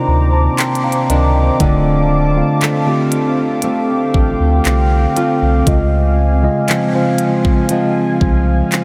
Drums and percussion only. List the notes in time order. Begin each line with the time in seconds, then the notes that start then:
0.58 clap, closed hi-hat
0.75 closed hi-hat
0.92 closed hi-hat
1.10 closed hi-hat
1.60 kick, closed hi-hat
2.61 clap, closed hi-hat
3.12 closed hi-hat
3.62 closed hi-hat
4.14 kick
4.65 clap, closed hi-hat
5.17 closed hi-hat
5.67 kick, closed hi-hat
6.68 clap, closed hi-hat
7.18 closed hi-hat
7.45 kick
7.69 closed hi-hat
8.21 kick
8.72 clap, closed hi-hat